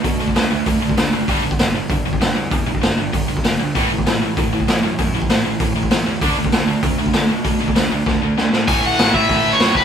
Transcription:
<<
  \new Staff \with { instrumentName = "Overdriven electric guitar" } { \time 4/4 \key a \major \tempo 4 = 194 r1 | r1 | r1 | r1 |
r1 | r1 | r1 | gis''8 fis''4 e''4~ e''16 cis''8. b'8 | }
  \new Staff \with { instrumentName = "Distorted electric guitar" } { \clef bass \time 4/4 \key a \major <d a>8 <d a>8 <d a>8 <d a>8 <d a>8 <d a>8 <d a>8 <d a>8 | <g, d g>8 <g, d>8 <g, d>8 <g, d>8 <g, d>8 <g, d>8 <g, d>8 <g, d>8 | <g, d>8 <g, d>8 <g, d>8 <g, d>8 <g, d>8 <g, d>8 <g, d>8 <g, d>8 | <a, e a>8 <a, e>8 <a, e>8 <a, e>8 <a, e>8 <a, e>8 <a, e>8 <a, e>8 |
<a, e>8 <a, e>8 <a, e>8 <a, e>8 <a, e>8 <a, e>8 <a, e>8 <a, e>8 | <d a d'>8 <d a>8 <d a>8 <d a>8 <d a>8 <d a>8 <d a>8 <d a>8 | <d a>8 <d a>8 <d a>8 <d a>8 <d a>8 <d a>8 <d a>8 <d a>8 | <a, e a>4. <a, e a>2~ <a, e a>8 | }
  \new Staff \with { instrumentName = "Distorted electric guitar" } { \clef bass \time 4/4 \key a \major <d a>8 <d a>8 <d a>8 <d a>8 <d a>8 <d a>8 <d a>8 <d a>8 | <g, d g>8 <g, d>8 <g, d>8 <g, d>8 <g, d>8 <g, d>8 <g, d>8 <g, d>8 | <g, d>8 <g, d>8 <g, d>8 <g, d>8 <g, d>8 <g, d>8 <g, d>8 <g, d>8 | <a, e a>8 <a, e>8 <a, e>8 <a, e>8 <a, e>8 <a, e>8 <a, e>8 <a, e>8 |
<a, e>8 <a, e>8 <a, e>8 <a, e>8 <a, e>8 <a, e>8 <a, e>8 <a, e>8 | <d a d'>8 <d a>8 <d a>8 <d a>8 <d a>8 <d a>8 <d a>8 <d a>8 | <d a>8 <d a>8 <d a>8 <d a>8 <d a>8 <d a>8 <d a>8 <d a>8 | <a, e a>4. <a, e a>4. <a, e a>4 | }
  \new Staff \with { instrumentName = "Picked electric bass" } { \clef bass \time 4/4 \key a \major b,4 d,8 d,8 d,8 d,8 d,8 fis,,8 | g,,8 g,,8 g,,4 g,,4 g,8 e,8 | e,4 g,,8 g,,8 g,,8 g,,8 g,,8 d,8 | a,,8 a,,8 a,,4 a,,4 a,8 fis,8 |
fis,4 a,,8 a,,8 a,,8 a,,8 a,,8 e,8 | d,8 d,8 d,4 d,4 d8 b,8 | b,4 d,8 d,8 d,8 d,8 d,8 a,8 | a,,8 a,,8 a,,8 a,,8 a,,8 a,,8 fis,8 fis,,8 | }
  \new DrumStaff \with { instrumentName = "Drums" } \drummode { \time 4/4 <hho bd>8. bd16 <hho sn>4 <hho bd>8. bd16 <hho sn>4 | <hho bd>8. bd16 <hho sn>4 <hho bd>8. bd16 <hho sn>4 | <hho bd>8. bd16 <hho sn>4 <hho bd>8. bd16 <hho sn>4 | <hho bd>8. bd16 <hho sn>4 <hho bd>8. bd16 <hho sn>4 |
<hho bd>8. bd16 <hho sn>4 <hho bd>8. bd16 <hho sn>4 | <hho bd>8. bd16 <hho sn>4 <hho bd>8. bd16 <hho sn>4 | <hho bd>8. bd16 <hho sn>4 <bd sn>4 sn8 sn8 | <hho bd>4 <hho sn>8 bd8 <hho bd>4 <hho sn>8 bd8 | }
>>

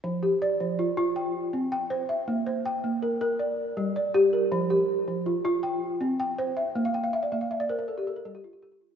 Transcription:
<<
  \new Staff \with { instrumentName = "Balafon" } { \time 12/8 \key c \mixolydian \tempo 4. = 107 << { r8 g'8 d''4 f'4 g''4. g''4 e''8~ | e''8 c''8 g''4 bes'4 d''4. d''4 bes'8~ | bes'8 g'4. f'4 g''4. g''4 e''8~ | e''8 r1 r4. | } \\ { r1. | r1. | r1. | r16 f''16 g''16 f''16 e''16 d''16 e''16 f''16 e''16 d''16 c''16 bes'16 a'16 g'16 a'16 bes'16 a'16 g'16 f'16 g'16 a'16 g'16 f'16 e'16 | } >> }
  \new Staff \with { instrumentName = "Balafon" } { \time 12/8 \key c \mixolydian f4 r8 f4 f'8 r4 c'4 c''4 | bes4 r8 bes4 bes'8 r4 g4 g'4 | f4 r8 f4 f'8 r4 c'4 c''4 | bes4 r8 bes4 bes'8 r4 g4 g'4 | }
>>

